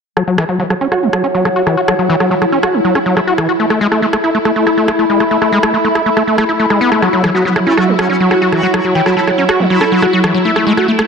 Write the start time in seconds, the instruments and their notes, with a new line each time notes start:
0.17 acid bass F#3, synth drone E4, ambient pad F#4, cross-stick
0.27 acid bass F#3, ambient pad C#5 F#5
0.38 acid bass E3, cross-stick
0.49 acid bass F#3
0.60 acid bass F#3
0.70 acid bass F#3, cross-stick
0.81 acid bass C#4
0.92 acid bass F#4, cross-stick
1.02 acid bass F#3
1.13 acid bass F#3, cross-stick
1.24 acid bass C#4
1.35 acid bass F#3
1.45 acid bass F#3, cross-stick
1.56 acid bass F#4
1.67 acid bass E3, cross-stick
1.77 acid bass F#4
1.88 acid bass F#3, cross-stick
1.99 acid bass F#3
2.10 acid bass E3
2.20 acid bass F#3, cross-stick
2.31 acid bass F#3
2.42 acid bass F#3, cross-stick
2.52 acid bass C#4
2.63 acid bass F#4, cross-stick
2.74 acid bass F#3
2.84 acid bass F#3
2.95 acid bass C#4, cross-stick
3.06 acid bass F#3
3.17 acid bass F#3, cross-stick
3.27 acid bass F#4
3.38 acid bass E3, cross-stick
3.49 acid bass F#4
3.60 acid bass A3, ambient pad A4
3.64 ambient pad E5
3.70 acid bass A3, cross-stick
3.81 acid bass G#3
3.92 acid bass A3, cross-stick
4.01 acid bass A3, ambient pad B5
4.13 acid bass A3, cross-stick
4.24 acid bass E4
4.34 acid bass A3
4.45 acid bass A3, cross-stick
4.56 acid bass A3
4.67 acid bass E4, cross-stick
4.77 acid bass A3
4.88 acid bass A3, cross-stick
4.99 acid bass A3
5.10 acid bass G#3
5.20 acid bass A3, cross-stick
5.31 acid bass A3
5.42 acid bass A3, cross-stick
5.52 acid bass G#3
5.63 acid bass A3, cross-stick
5.74 acid bass A3
5.85 acid bass A3
5.95 acid bass E4, cross-stick
6.06 acid bass A3
6.17 acid bass A3, cross-stick
6.27 acid bass A3
6.38 acid bass A3, cross-stick
6.49 acid bass E4
6.60 acid bass A3
6.70 acid bass G#3, cross-stick
6.81 acid bass B3
6.92 acid bass A3, cross-stick
7.02 acid bass F#3, analog synth lead F#4, ambient pad F#4, cross-stick
7.13 acid bass F#3, analog synth lead F#3, ambient pad F#5
7.24 acid bass E3, analog synth lead F#3, cross-stick
7.34 acid bass F#3, wobble bass B3, analog synth lead F#4
7.40 ambient pad C#5
7.45 analog synth lead F#3, acid bass F#3, wobble bass B3
7.56 analog synth lead F#3, acid bass F#3, cross-stick
7.67 wobble bass A3, acid bass C#4, analog synth lead E4
7.77 analog synth lead F#3, acid bass F#4, cross-stick
7.88 analog synth lead F#3, acid bass F#3
7.99 acid bass F#3, wobble bass C#4, analog synth lead F#4, cross-stick
8.10 analog synth lead F#3, acid bass C#4
8.20 analog synth lead F#3, acid bass F#3
8.31 acid bass F#3, analog synth lead F#4, cross-stick
8.42 analog synth lead F#3, acid bass F#4
8.52 acid bass E3, analog synth lead F#3, wobble bass F#4, cross-stick
8.63 acid bass F#3, analog synth lead F#4
8.74 analog synth lead F#3, acid bass F#3, cross-stick
8.85 acid bass F#3, analog synth lead F#3
8.95 acid bass E3, analog synth lead G4
9.06 acid bass F#3, analog synth lead F#3, wobble bass E4, cross-stick
9.17 acid bass F#3, wobble bass E4, analog synth lead A4
9.27 analog synth lead F#3, acid bass F#3, cross-stick
9.38 analog synth lead F#3, acid bass C#4
9.49 analog synth lead F#4, acid bass F#4, cross-stick
9.60 analog synth lead F#3, acid bass F#3
9.70 analog synth lead F#3, acid bass F#3, wobble bass E4
9.81 acid bass C#4, analog synth lead A4, cross-stick
9.92 analog synth lead F#3, acid bass F#3
10.02 acid bass F#3, analog synth lead F#4, cross-stick
10.13 analog synth lead F#3, acid bass F#4
10.24 acid bass E3, analog synth lead F#3, cross-stick
10.35 analog synth lead F#3, acid bass F#3
10.45 acid bass A3, analog synth lead E4, ambient pad A4
10.56 analog synth lead A3, acid bass A3, ambient pad E5, cross-stick
10.67 acid bass G#3, analog synth lead A3
10.77 acid bass A3, analog synth lead F#4, cross-stick
10.88 acid bass A3, analog synth lead A3
10.99 acid bass A3, analog synth lead A3, cross-stick